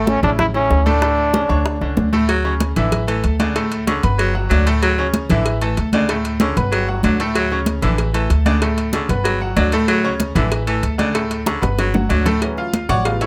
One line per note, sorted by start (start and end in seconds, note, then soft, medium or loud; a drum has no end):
0.00 0.17 A1 medium
0.00 0.17 A2 medium
0.00 0.17 A3 medium
0.00 0.17 A4 medium
0.07 0.23 C#4 loud
0.07 high bongo medium
0.07 high conga loud
0.23 0.67 A1 loud
0.23 0.49 C#3 medium
0.23 0.49 C#4 medium
0.23 0.31 D4 medium
0.23 0.49 E4 medium
0.23 high bongo soft
0.23 high conga soft
0.23 low conga medium
0.39 0.46 E4 loud
0.39 high bongo medium
0.39 high conga soft
0.39 low conga medium
0.54 0.80 C#3 medium
0.54 0.80 C#4 medium
0.54 0.88 C#4 loud
0.54 0.80 E4 medium
0.54 high bongo soft
0.54 high conga soft
0.71 1.44 D2 medium
0.71 high bongo soft
0.71 low bongo medium
0.71 high conga soft
0.86 0.99 A2 medium
0.86 0.99 A3 medium
0.86 1.97 D4 loud
0.86 0.99 A4 medium
0.86 high bongo soft
0.86 high conga medium
1.02 1.28 A2 medium
1.02 1.28 A3 medium
1.02 1.29 A4 medium
1.02 high bongo medium
1.02 high conga soft
1.18 high conga soft
1.34 1.47 C#3 medium
1.34 1.47 C#4 medium
1.34 1.47 D4 medium
1.34 high bongo medium
1.34 high conga medium
1.49 1.79 D2 medium
1.49 1.75 D3 medium
1.49 1.76 D4 medium
1.49 1.75 C#5 medium
1.49 high bongo soft
1.49 high conga soft
1.66 high bongo medium
1.66 high conga soft
1.81 1.96 C#2 medium
1.81 2.07 D3 medium
1.81 2.07 C#4 medium
1.81 2.08 D4 medium
1.81 high bongo soft
1.81 high conga soft
1.97 2.71 D2 medium
1.97 high bongo soft
1.97 low bongo medium
1.97 high conga medium
2.13 2.26 A2 medium
2.13 2.26 A3 medium
2.13 2.26 A4 medium
2.13 high bongo soft
2.13 high conga medium
2.29 2.54 F#3 medium
2.29 cowbell loud
2.44 2.70 C#3 medium
2.44 2.71 C#4 medium
2.44 2.71 C#5 medium
2.44 high conga soft
2.60 cowbell medium
2.60 high conga medium
2.76 3.21 A1 medium
2.76 2.93 D3 medium
2.76 3.02 E3 medium
2.76 3.02 E4 medium
2.76 3.03 E5 medium
2.76 cowbell medium
2.76 high conga soft
2.76 low conga medium
2.92 cowbell loud
2.92 high conga soft
2.92 low conga medium
3.07 3.25 E3 medium
3.07 3.34 A3 medium
3.07 3.34 A4 medium
3.07 3.34 A5 medium
3.07 cowbell medium
3.07 high conga soft
3.24 3.98 D2 medium
3.24 cowbell medium
3.24 high conga soft
3.40 3.65 C#3 medium
3.40 3.53 D3 medium
3.40 3.53 D4 medium
3.40 3.53 D5 medium
3.40 cowbell medium
3.40 high conga medium
3.55 3.81 A2 medium
3.55 3.82 A3 medium
3.55 3.82 A4 medium
3.55 cowbell loud
3.55 high conga soft
3.71 cowbell medium
3.71 high conga soft
3.87 4.00 C#3 medium
3.87 4.04 D3 medium
3.87 4.00 C#4 medium
3.87 4.00 C#5 medium
3.87 cowbell medium
3.87 high conga medium
4.03 4.47 G1 loud
4.03 4.29 B3 medium
4.03 4.29 B4 medium
4.03 4.29 B5 medium
4.03 cowbell medium
4.03 high conga soft
4.18 4.35 F#3 medium
4.18 cowbell loud
4.18 high conga soft
4.35 4.48 F#3 medium
4.35 4.48 F#4 medium
4.35 4.48 F#5 medium
4.35 high conga soft
4.50 5.24 D2 medium
4.50 4.64 D3 medium
4.50 4.66 F#3 medium
4.50 4.64 D4 medium
4.50 4.64 D5 medium
4.50 cowbell medium
4.50 high conga medium
4.66 4.92 A2 medium
4.66 4.92 A3 medium
4.66 4.93 A4 loud
4.66 cowbell medium
4.82 5.07 F#3 medium
4.82 cowbell loud
4.82 high conga soft
4.98 5.24 C#3 medium
4.98 5.24 C#4 medium
4.98 5.24 C#5 medium
4.98 high conga soft
5.14 cowbell medium
5.14 high conga loud
5.30 5.74 A1 loud
5.30 5.47 D3 medium
5.30 5.56 E3 medium
5.30 5.56 E4 medium
5.30 5.56 E5 medium
5.30 cowbell medium
5.30 high conga soft
5.30 low conga medium
5.46 cowbell loud
5.61 5.78 E3 medium
5.61 5.87 A3 medium
5.61 5.87 A4 medium
5.61 5.88 A5 medium
5.61 cowbell medium
5.61 high conga soft
5.77 6.51 D2 medium
5.77 cowbell medium
5.77 high conga soft
5.93 6.18 C#3 medium
5.93 6.06 D3 medium
5.93 6.06 D4 medium
5.93 6.07 D5 medium
5.93 cowbell medium
5.93 high conga medium
6.09 6.35 A2 medium
6.09 6.35 A3 medium
6.09 6.35 A4 medium
6.09 cowbell loud
6.09 high conga soft
6.25 cowbell medium
6.25 high conga soft
6.40 6.54 C#3 medium
6.40 6.57 D3 medium
6.40 6.54 C#4 medium
6.40 6.54 C#5 medium
6.40 cowbell medium
6.40 high conga medium
6.56 7.01 G1 loud
6.56 6.82 B3 medium
6.56 6.82 B4 medium
6.56 6.83 B5 medium
6.56 cowbell medium
6.56 high conga soft
6.72 6.88 F#3 medium
6.72 cowbell loud
6.72 high conga soft
6.88 7.01 F#3 medium
6.88 7.01 F#4 medium
6.88 7.01 F#5 medium
6.88 high conga soft
7.03 7.77 D2 medium
7.03 7.17 D3 medium
7.03 7.21 F#3 medium
7.03 7.17 D4 medium
7.03 7.17 D5 medium
7.03 cowbell medium
7.03 high conga medium
7.20 7.46 A2 medium
7.20 7.46 A3 medium
7.20 7.46 A4 medium
7.20 cowbell medium
7.35 7.61 F#3 medium
7.35 cowbell loud
7.35 high conga soft
7.51 7.77 C#3 medium
7.51 7.77 C#4 medium
7.51 7.78 C#5 medium
7.51 high conga soft
7.66 cowbell medium
7.66 high conga medium
7.82 8.27 A1 medium
7.82 7.99 D3 medium
7.82 8.09 E3 medium
7.82 8.09 E4 medium
7.82 8.09 E5 medium
7.82 cowbell medium
7.82 high conga soft
7.82 low conga medium
7.98 cowbell loud
7.98 high conga soft
8.14 8.30 E3 medium
8.14 8.40 A3 medium
8.14 8.40 A4 medium
8.14 8.41 A5 medium
8.14 cowbell medium
8.14 high conga soft
8.30 9.04 D2 medium
8.30 cowbell medium
8.30 high conga soft
8.46 8.71 C#3 medium
8.46 8.59 D3 medium
8.46 8.59 D4 medium
8.46 8.59 D5 medium
8.46 cowbell medium
8.46 high conga medium
8.62 8.88 A2 medium
8.62 8.88 A3 medium
8.62 8.88 A4 medium
8.62 cowbell loud
8.77 cowbell medium
8.77 high conga soft
8.93 9.07 C#3 medium
8.93 9.09 D3 medium
8.93 9.07 C#4 medium
8.93 9.07 C#5 medium
8.93 cowbell medium
8.93 high conga loud
9.09 9.53 G1 loud
9.09 9.36 B3 medium
9.09 9.36 B4 medium
9.09 9.36 B5 medium
9.09 cowbell medium
9.09 high conga soft
9.24 9.41 F#3 medium
9.24 cowbell loud
9.24 high conga soft
9.41 9.54 F#3 medium
9.41 9.54 F#4 medium
9.41 9.54 F#5 medium
9.41 high conga soft
9.56 10.30 D2 medium
9.56 9.70 D3 medium
9.56 9.73 F#3 medium
9.56 9.70 D4 medium
9.56 9.70 D5 medium
9.56 cowbell medium
9.56 high conga medium
9.72 9.99 A2 medium
9.72 9.99 A3 medium
9.72 9.99 A4 loud
9.72 cowbell medium
9.88 10.13 F#3 medium
9.88 cowbell loud
9.88 high conga soft
10.04 10.30 C#3 medium
10.04 10.30 C#4 medium
10.04 10.30 C#5 medium
10.04 high conga soft
10.20 cowbell medium
10.20 high conga loud
10.35 10.80 A1 loud
10.35 10.52 D3 medium
10.35 10.61 E3 medium
10.35 10.62 E4 medium
10.35 10.62 E5 medium
10.35 cowbell medium
10.35 high conga soft
10.35 low conga medium
10.52 cowbell loud
10.52 high conga soft
10.67 10.84 E3 medium
10.67 10.93 A3 medium
10.67 10.93 A4 medium
10.67 10.93 A5 medium
10.67 cowbell medium
10.67 high conga soft
10.83 11.57 D2 medium
10.83 cowbell medium
10.83 high conga soft
10.98 11.24 C#3 medium
10.98 11.12 D3 medium
10.98 11.12 D4 medium
10.98 11.12 D5 medium
10.98 cowbell medium
10.98 high conga medium
11.14 11.40 A2 medium
11.14 11.41 A3 medium
11.14 11.41 A4 medium
11.14 cowbell loud
11.14 high conga soft
11.31 cowbell medium
11.31 high conga soft
11.46 11.59 C#3 medium
11.46 11.63 D3 medium
11.46 11.59 C#4 medium
11.46 11.60 C#5 medium
11.46 cowbell medium
11.46 high bongo medium
11.46 high conga medium
11.61 12.07 G1 loud
11.61 11.88 B3 medium
11.61 11.88 B4 medium
11.61 11.88 B5 medium
11.61 cowbell medium
11.61 high bongo medium
11.61 high conga soft
11.78 11.95 F#3 medium
11.78 cowbell loud
11.78 low bongo medium
11.78 high conga soft
11.94 12.07 F#3 medium
11.94 12.07 F#4 medium
11.94 12.07 F#5 medium
11.94 low bongo medium
11.94 high conga loud
12.09 12.84 D2 medium
12.09 12.23 D3 medium
12.09 12.27 F#3 medium
12.09 12.23 D4 medium
12.09 12.23 D5 medium
12.09 cowbell medium
12.09 high conga medium
12.26 12.39 A2 medium
12.26 12.39 A3 medium
12.26 12.39 A4 medium
12.26 cowbell medium
12.26 low bongo medium
12.26 low conga medium
12.41 12.62 E3 medium
12.41 12.63 F#3 medium
12.41 12.63 C#4 medium
12.41 cowbell loud
12.41 high conga soft
12.58 12.87 F4 medium
12.58 12.87 F5 medium
12.58 high conga soft
12.73 cowbell medium
12.73 high conga medium
12.89 13.26 A1 loud
12.89 13.05 F#4 medium
12.89 13.05 C#5 medium
12.89 13.05 D5 medium
12.89 13.04 F#5 loud
12.89 cowbell medium
12.89 high conga soft
12.89 low conga medium
13.05 13.26 C#3 medium
13.05 13.26 G3 medium
13.05 13.26 B3 medium
13.05 13.21 F4 medium
13.05 13.20 F5 medium
13.05 cowbell loud
13.05 high conga soft
13.21 13.26 E4 medium
13.21 13.26 A4 medium
13.21 13.26 C#5 medium
13.21 13.26 E5 medium
13.21 cowbell medium
13.21 high conga soft